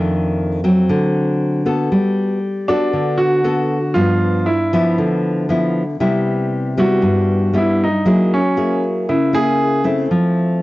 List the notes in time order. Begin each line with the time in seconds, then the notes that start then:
Already playing: F2 D#3 A3 D4
0.64 F#3 C4
0.89 D3
1.66 B3 F#4 A4
1.92 G3
2.68 B3 D4 F#4 A4
2.93 D3
3.18 F#4
3.44 B3 F#4 A4
3.94 G2 F3 B3 F4
4.46 E4
4.73 F3 B3 E4
4.98 D3
5.49 F3 B3 E4
6.00 C3 G3 B3 E4
6.78 G3 B3 E4 F#4
7.02 G2
7.53 G3 B3 E4
7.58 E4
7.84 D#4
8.05 F#3 A#3 E4 G#4
8.34 C#4
8.57 A#3 E4 G#4
9.09 C#3 E4
9.33 A#3 E4 G#4
9.84 A3 C4 E4
10.11 F3